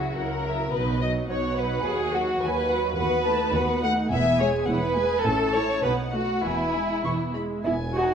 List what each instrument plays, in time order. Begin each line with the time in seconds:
Already playing: double bass section C#2, cello section C#3, viola section F#3 E4, violin section F#4 E5
0.17 double bass section C#2, cello section C#3, viola section F#3 E4, violin section A#4 F#5
0.46 viola section F#3 E4, violin section E5
0.74 double bass section B1, cello section B2, viola section F#3 D#4, violin section B4 D#5
1.02 viola section F#3 D#4, violin section D#5
1.30 double bass section B1, cello section B2, viola section F#3 D#4, violin section C#5 F#5
1.58 viola section F#3 D#4, violin section B4
1.85 double bass section D#2, cello section D#2, viola section F#3 F#4, violin section G#4
2.13 viola section F#3 F#4, violin section F#4
2.42 double bass section D#2, cello section D#2, viola section F#3 F#4, violin section B4 G#5
2.70 viola section F#3 F#4, violin section F#5
2.98 double bass section D#2, cello section D#2, viola section B3 F#4, violin section B4 F#5
3.26 viola section A3 D#4, violin section A5
3.54 double bass section D#2, cello section D#2, viola section B3 F#4, violin section F#5
3.83 viola section A3 D#4, violin section F#5
4.11 double bass section E1, cello section E2, viola section B3 E4, violin section E5 G#5
4.40 viola section G#3 G#4, violin section C#5
4.68 double bass section E1, cello section E2, viola section B3 E4, violin section B4 F#5
4.96 viola section G#3 G#4, violin section G#5
5.24 double bass section A1, cello section A2, viola section E3 C#4, violin section A4 A5
5.55 viola section A3 E4, violin section C#5
5.84 double bass section B1, cello section B2, viola section B3 D#4, violin section B4 F#5
6.14 viola section A3 F#4, violin section F#4
6.43 double bass section E1, cello section E2, viola section E3 B3, violin section E4 G#5
6.75 viola section G#3 E4
7.04 double bass section E1, cello section E2, viola section E3 B3, violin section C#6
7.34 viola section G#3 E4, violin section B5
7.65 double bass section E1, viola section B3, cello section E4, violin section G#5
7.94 viola section D#4, cello section F#4